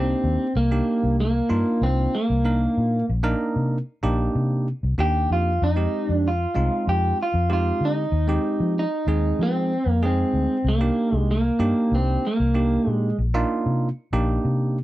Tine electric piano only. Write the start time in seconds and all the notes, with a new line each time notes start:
Already playing: A#3 D4 D#4 G4
0.71 A#3 D4 D#4 G4
1.49 A#3 D4 D#4 F4
2.45 A#3 D4 D#4 A#4
3.23 A#3 D4 D#4 A#4
4.03 A#3 D4 D#4 G4
4.98 A#3 D4 D#4 G4
5.76 G#3 C4 D#4 G4
6.55 G#3 C4 D#4 F4
7.50 G#3 C4 D#4 G4
8.28 G#3 C4 D#4 G4
9.07 G#3 C4 D#4 G#4
10.03 G#3 C4 D#4 G#4
10.81 A#3 D4 D#4 G4
11.59 A#3 D4 D#4 G4
12.54 A#3 D4 D#4 G4
13.34 A#3 D4 D#4 F4
14.13 A#3 D4 D#4 G4